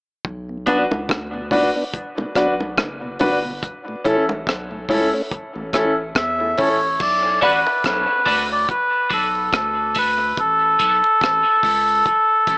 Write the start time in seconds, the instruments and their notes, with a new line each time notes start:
0.25 sub bass B1, kick
0.49 tonewheel organ B2
0.66 tonewheel organ F#3 B3 D4, clean electric guitar B3 D4 F#4, grand piano D4 F#4 B4, kick, closed hi-hat
0.91 sub bass C#2, high bongo
1.09 sub bass D2, kick, cross-stick, high bongo
1.34 tonewheel organ B2
1.51 tonewheel organ F#3 B3 D4, grand piano D4 F#4 B4, kick, open hi-hat, low bongo
1.75 tonewheel organ B3 D4
1.93 kick, hi-hat pedal
2.18 tonewheel organ B2, high bongo
2.35 sub bass B1, tonewheel organ F#3 B3 D4, grand piano D4 F#4 B4, kick, cross-stick, closed hi-hat
2.60 high bongo
2.78 sub bass F#1, kick, cross-stick, high bongo
3.02 tonewheel organ B2
3.19 sub bass G1, tonewheel organ F#3 B3 D4, grand piano D4 F#4 B4, kick, open hi-hat, high bongo, low bongo
3.45 tonewheel organ B2
3.62 kick, hi-hat pedal
3.88 tonewheel organ A2
4.04 sub bass A1, tonewheel organ E3 A3 C#4, grand piano C#4 E4 A4, kick, closed hi-hat
4.29 high bongo
4.47 sub bass B1, kick, cross-stick
4.71 tonewheel organ A2
4.89 sub bass C#2, tonewheel organ E3 A3 C#4, grand piano C#4 E4 A4, kick, open hi-hat
5.13 tonewheel organ A3 C#4
5.31 kick, hi-hat pedal
5.55 sub bass A1, tonewheel organ A2
5.73 sub bass A1, tonewheel organ E3 A3 C#4, grand piano C#4 E4 A4, kick, cross-stick, closed hi-hat
6.15 sub bass E2, melodica E5, kick, cross-stick
6.40 tonewheel organ A2, grand piano E4 A4
6.58 sub bass A1, tonewheel organ E3 A3 C#4, grand piano C#4 E4 A4, melodica C#5, kick, open hi-hat
6.83 tonewheel organ A2
7.00 sub bass B1, melodica D5, kick, crash
7.24 tonewheel organ B2
7.41 sub bass A1, tonewheel organ F#3 B3 D4, clean electric guitar D4 F#4 B4, grand piano D4 F#4 B4, melodica B4, kick, open hi-hat
7.67 high bongo
7.84 sub bass B1, melodica B4, kick, cross-stick, hi-hat pedal, high bongo
8.26 sub bass D2, tonewheel organ F#3 B3 D4, clean electric guitar D4 F#4 B4, grand piano D4 F#4 B4, kick, open hi-hat, low bongo
8.51 tonewheel organ B3 D4, melodica D5
8.69 melodica B4, kick, hi-hat pedal
9.10 sub bass B1, tonewheel organ F#3 D4, clean electric guitar D4 F#4 B4, grand piano D4 F#4 B4, melodica A4, kick, open hi-hat
9.35 high bongo
9.53 sub bass D2, melodica A4, kick, cross-stick, hi-hat pedal, high bongo
9.95 clean electric guitar D4 F#4 B4, grand piano D4 F#4 B4, melodica B4, kick, open hi-hat, high bongo, low bongo
10.37 sub bass A1, melodica A4, kick, hi-hat pedal
10.79 sub bass B1, clean electric guitar C#4 E4 A4, grand piano C#4 E4 A4, kick, closed hi-hat
11.04 high bongo
11.21 sub bass A1, kick, cross-stick, high bongo
11.63 sub bass C#2, grand piano C#4 E4 A4, kick, open hi-hat, low bongo
11.88 tonewheel organ A3 C#4
12.05 kick, hi-hat pedal
12.47 sub bass A1, tonewheel organ E3 A3 C#4, grand piano C#4 E4 A4, kick, closed hi-hat